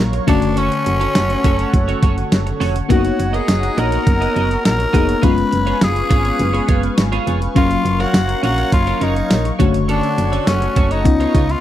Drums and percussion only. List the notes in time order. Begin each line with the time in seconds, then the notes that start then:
0.13 closed hi-hat
0.28 kick, closed hi-hat
0.42 closed hi-hat
0.57 closed hi-hat
0.72 closed hi-hat
0.86 closed hi-hat
1.01 closed hi-hat
1.15 snare, closed hi-hat, tambourine
1.30 closed hi-hat
1.44 kick, closed hi-hat
1.59 closed hi-hat
1.74 kick, closed hi-hat
1.89 closed hi-hat
2.03 kick, closed hi-hat
2.18 closed hi-hat
2.32 snare, closed hi-hat, tambourine
2.47 closed hi-hat
2.61 open hi-hat
2.76 closed hi-hat
2.90 kick, closed hi-hat
3.05 closed hi-hat
3.20 closed hi-hat
3.34 closed hi-hat
3.48 snare, closed hi-hat, tambourine
3.63 closed hi-hat
3.78 closed hi-hat
3.92 closed hi-hat
4.07 kick, closed hi-hat
4.22 closed hi-hat
4.36 closed hi-hat
4.51 closed hi-hat
4.65 snare, closed hi-hat, tambourine
4.80 closed hi-hat
4.94 kick, closed hi-hat
5.09 closed hi-hat
5.23 kick, closed hi-hat
5.38 closed hi-hat
5.52 closed hi-hat
5.67 closed hi-hat
5.81 snare, closed hi-hat, tambourine
5.96 closed hi-hat
6.11 kick, closed hi-hat
6.25 closed hi-hat
6.39 closed hi-hat
6.54 closed hi-hat
6.68 kick, closed hi-hat
6.83 closed hi-hat
6.98 snare, closed hi-hat, tambourine
7.13 closed hi-hat
7.27 closed hi-hat
7.42 closed hi-hat
7.56 kick, closed hi-hat
7.71 closed hi-hat
7.86 closed hi-hat
8.00 closed hi-hat
8.14 snare, closed hi-hat, tambourine
8.29 closed hi-hat
8.43 closed hi-hat
8.58 closed hi-hat
8.72 kick, closed hi-hat
8.87 closed hi-hat
9.01 closed hi-hat
9.16 closed hi-hat
9.30 snare, closed hi-hat, tambourine
9.45 closed hi-hat
9.60 kick, closed hi-hat
9.74 closed hi-hat
9.89 closed hi-hat
10.03 closed hi-hat
10.18 closed hi-hat
10.33 closed hi-hat
10.47 snare, closed hi-hat, tambourine
10.62 closed hi-hat
10.76 kick, closed hi-hat
10.91 closed hi-hat
11.05 kick, closed hi-hat
11.21 closed hi-hat
11.35 kick, closed hi-hat
11.49 closed hi-hat